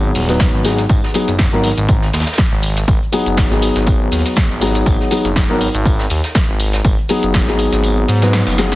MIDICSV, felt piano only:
0, 0, Header, 1, 2, 480
1, 0, Start_track
1, 0, Key_signature, 5, "minor"
1, 0, Tempo, 495868
1, 866, Time_signature, 4, 2, 24, 8
1, 8472, End_track
2, 0, Start_track
2, 0, Title_t, "Felt piano"
2, 0, Program_c, 0, 0
2, 0, Note_on_c, 0, 54, 88
2, 0, Note_on_c, 0, 59, 81
2, 0, Note_on_c, 0, 63, 81
2, 0, Note_on_c, 0, 68, 99
2, 248, Note_off_c, 0, 54, 0
2, 251, Note_off_c, 0, 59, 0
2, 254, Note_off_c, 0, 63, 0
2, 257, Note_off_c, 0, 68, 0
2, 275, Note_on_c, 0, 54, 78
2, 278, Note_on_c, 0, 59, 68
2, 281, Note_on_c, 0, 63, 68
2, 283, Note_on_c, 0, 71, 82
2, 599, Note_off_c, 0, 54, 0
2, 600, Note_off_c, 0, 59, 0
2, 602, Note_off_c, 0, 63, 0
2, 603, Note_off_c, 0, 71, 0
2, 622, Note_on_c, 0, 54, 81
2, 625, Note_on_c, 0, 59, 69
2, 627, Note_on_c, 0, 63, 75
2, 630, Note_on_c, 0, 68, 91
2, 778, Note_off_c, 0, 54, 0
2, 779, Note_off_c, 0, 59, 0
2, 780, Note_off_c, 0, 63, 0
2, 781, Note_off_c, 0, 68, 0
2, 1102, Note_on_c, 0, 54, 80
2, 1105, Note_on_c, 0, 59, 75
2, 1107, Note_on_c, 0, 63, 74
2, 1110, Note_on_c, 0, 68, 92
2, 1258, Note_off_c, 0, 54, 0
2, 1259, Note_off_c, 0, 59, 0
2, 1260, Note_off_c, 0, 63, 0
2, 1262, Note_off_c, 0, 68, 0
2, 1475, Note_on_c, 0, 54, 85
2, 1478, Note_on_c, 0, 59, 79
2, 1481, Note_on_c, 0, 63, 78
2, 1483, Note_on_c, 0, 70, 99
2, 1610, Note_off_c, 0, 54, 0
2, 1611, Note_off_c, 0, 59, 0
2, 1612, Note_off_c, 0, 63, 0
2, 1614, Note_off_c, 0, 70, 0
2, 3023, Note_on_c, 0, 54, 90
2, 3025, Note_on_c, 0, 59, 80
2, 3028, Note_on_c, 0, 63, 82
2, 3031, Note_on_c, 0, 68, 97
2, 3366, Note_off_c, 0, 54, 0
2, 3367, Note_off_c, 0, 59, 0
2, 3368, Note_off_c, 0, 63, 0
2, 3370, Note_off_c, 0, 68, 0
2, 3392, Note_on_c, 0, 54, 89
2, 3397, Note_on_c, 0, 59, 86
2, 3403, Note_on_c, 0, 63, 82
2, 3409, Note_on_c, 0, 68, 101
2, 4437, Note_off_c, 0, 54, 0
2, 4440, Note_off_c, 0, 59, 0
2, 4443, Note_off_c, 0, 63, 0
2, 4445, Note_off_c, 0, 68, 0
2, 4463, Note_on_c, 0, 54, 91
2, 4465, Note_on_c, 0, 59, 78
2, 4468, Note_on_c, 0, 63, 84
2, 4471, Note_on_c, 0, 68, 94
2, 4919, Note_off_c, 0, 54, 0
2, 4920, Note_off_c, 0, 59, 0
2, 4922, Note_off_c, 0, 63, 0
2, 4923, Note_off_c, 0, 68, 0
2, 4942, Note_on_c, 0, 54, 82
2, 4945, Note_on_c, 0, 59, 74
2, 4948, Note_on_c, 0, 63, 75
2, 4950, Note_on_c, 0, 68, 87
2, 5098, Note_off_c, 0, 54, 0
2, 5099, Note_off_c, 0, 59, 0
2, 5100, Note_off_c, 0, 63, 0
2, 5102, Note_off_c, 0, 68, 0
2, 5316, Note_on_c, 0, 54, 89
2, 5319, Note_on_c, 0, 59, 83
2, 5322, Note_on_c, 0, 63, 77
2, 5324, Note_on_c, 0, 70, 97
2, 5450, Note_off_c, 0, 54, 0
2, 5451, Note_off_c, 0, 59, 0
2, 5453, Note_off_c, 0, 63, 0
2, 5454, Note_off_c, 0, 70, 0
2, 6864, Note_on_c, 0, 54, 85
2, 6866, Note_on_c, 0, 59, 82
2, 6869, Note_on_c, 0, 63, 81
2, 6871, Note_on_c, 0, 68, 97
2, 7206, Note_off_c, 0, 54, 0
2, 7207, Note_off_c, 0, 59, 0
2, 7209, Note_off_c, 0, 63, 0
2, 7210, Note_off_c, 0, 68, 0
2, 7232, Note_on_c, 0, 54, 91
2, 7238, Note_on_c, 0, 59, 78
2, 7243, Note_on_c, 0, 63, 81
2, 7248, Note_on_c, 0, 68, 103
2, 7929, Note_off_c, 0, 54, 0
2, 7932, Note_off_c, 0, 59, 0
2, 7934, Note_off_c, 0, 63, 0
2, 7937, Note_off_c, 0, 68, 0
2, 7956, Note_on_c, 0, 54, 76
2, 7958, Note_on_c, 0, 59, 69
2, 7961, Note_on_c, 0, 63, 67
2, 7964, Note_on_c, 0, 71, 85
2, 8279, Note_off_c, 0, 54, 0
2, 8280, Note_off_c, 0, 59, 0
2, 8282, Note_off_c, 0, 63, 0
2, 8283, Note_off_c, 0, 71, 0
2, 8303, Note_on_c, 0, 54, 83
2, 8306, Note_on_c, 0, 59, 73
2, 8309, Note_on_c, 0, 63, 73
2, 8311, Note_on_c, 0, 68, 91
2, 8458, Note_off_c, 0, 54, 0
2, 8459, Note_off_c, 0, 59, 0
2, 8461, Note_off_c, 0, 63, 0
2, 8462, Note_off_c, 0, 68, 0
2, 8472, End_track
0, 0, End_of_file